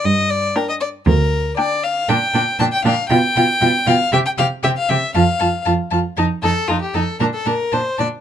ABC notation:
X:1
M:4/4
L:1/16
Q:1/4=118
K:Gm
V:1 name="Violin"
z4 g4 z4 g4 | [K:F] g2 g2 g2 g2 g2 g2 g2 g2 | g2 g2 g2 g2 a2 a2 a2 a2 | a2 a2 a2 a2 a2 a2 a2 a2 |]
V:2 name="Violin"
e2 d2 B e d2 B4 d2 f2 | [K:F] g4 a g f2 g6 f2 | e g f2 e f e2 f4 z4 | z2 A2 F G A2 B A B2 c2 d2 |]
V:3 name="Viola"
z4 D4 z4 D4 | [K:F] D2 D2 D2 D2 F2 F2 F2 F2 | G2 G2 G2 G2 F2 F2 F2 F2 | _E2 E2 E2 E2 D2 D2 D2 D2 |]
V:4 name="Cello" clef=bass
G,,4 z4 D,,4 z4 | [K:F] B,,2 B,,2 B,,2 B,,2 =B,,2 B,,2 B,,2 B,,2 | C,2 C,2 C,2 C,2 F,,2 F,,2 F,,2 F,,2 | F,,2 F,,2 F,,2 F,,2 B,,2 B,,2 B,,2 B,,2 |]